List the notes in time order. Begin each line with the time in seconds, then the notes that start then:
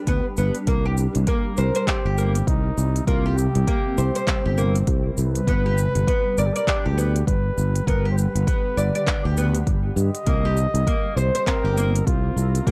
Already playing: G3 D4 G4
0.07 D2 B3, kick, closed hi-hat, shaker
0.37 G1 B3, shaker
0.55 closed hi-hat, shaker
0.67 C2 C3 A#3 C4, kick, closed hi-hat, shaker
0.85 G4
0.97 shaker
1.15 C2, closed hi-hat, shaker
1.27 A#3, kick, closed hi-hat, shaker
1.57 C2 A#4 C5, shaker
1.75 C5, closed hi-hat, shaker
1.87 C4 G4, kick, clap, closed hi-hat, shaker
2.05 G1 G4
2.18 A#3, shaker
2.35 closed hi-hat, shaker
2.47 C2 D#4, kick, closed hi-hat, shaker
2.78 C2, shaker
2.96 closed hi-hat, shaker
3.07 C2 A#3 F4, kick, closed hi-hat, shaker
3.26 G4
3.38 G4, shaker
3.55 C2, closed hi-hat, shaker
3.67 A#3, kick, closed hi-hat, shaker
3.98 C2 C5, shaker
4.15 C5, closed hi-hat, shaker
4.27 C4, kick, clap, closed hi-hat, shaker
4.46 G1 G4
4.58 A#3, shaker
4.75 closed hi-hat, shaker
4.87 C2, kick, closed hi-hat, shaker
5.17 C2 B4, shaker
5.35 closed hi-hat, shaker
5.47 G1 D3 B3 G4, kick, closed hi-hat, shaker
5.66 G4
5.78 shaker
5.95 G1, closed hi-hat, shaker
6.07 B3, kick, closed hi-hat, shaker
6.38 G1 A#4 D5, shaker
6.46 G4
6.53 A#4 D5, closed hi-hat, shaker
6.67 D4 G4, kick, clap, closed hi-hat, shaker
6.86 D2 G4
6.98 B3, shaker
7.16 closed hi-hat, shaker
7.27 G1 B4, kick, closed hi-hat, shaker
7.58 G1, shaker
7.76 closed hi-hat, shaker
7.86 G1 B3 A#4, kick, closed hi-hat, shaker
8.05 G4
8.11 C5
8.17 B4, shaker
8.35 G1, closed hi-hat, shaker
8.47 B3, kick, closed hi-hat, shaker
8.77 G1 D5, shaker
8.95 D5, closed hi-hat, shaker
9.07 D4, kick, clap, closed hi-hat, shaker
9.25 D2 G4
9.37 B3, shaker
9.55 closed hi-hat, shaker
9.67 G1, kick, closed hi-hat, shaker
9.96 G2 D#5, shaker
10.15 closed hi-hat, shaker
10.27 C2 C3 G3 A#3 C4, kick, closed hi-hat, shaker
10.45 G4
10.57 shaker
10.74 C2, closed hi-hat, shaker
10.87 A#3, kick, closed hi-hat, shaker
11.16 C2 C5, shaker
11.35 C5, closed hi-hat, shaker
11.46 C4 A#4, kick, clap, closed hi-hat, shaker
11.64 G1 G4
11.77 A#3, shaker
11.96 closed hi-hat, shaker
12.06 C2 F4, kick, closed hi-hat, shaker
12.36 C2, shaker
12.55 closed hi-hat, shaker
12.67 C2 A#3 G4, kick, closed hi-hat, shaker